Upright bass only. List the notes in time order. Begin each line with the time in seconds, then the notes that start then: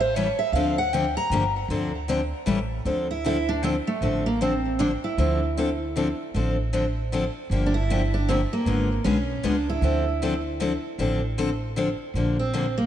Already playing: A1
0.52 D2
1.30 G1
1.68 D2
2.46 A1
2.85 D2
4.01 A1
5.17 D2
6.34 A1
7.50 G1
8.65 G#1
9.04 B1
9.43 C#2
9.81 D2
10.98 A1
12.14 A#1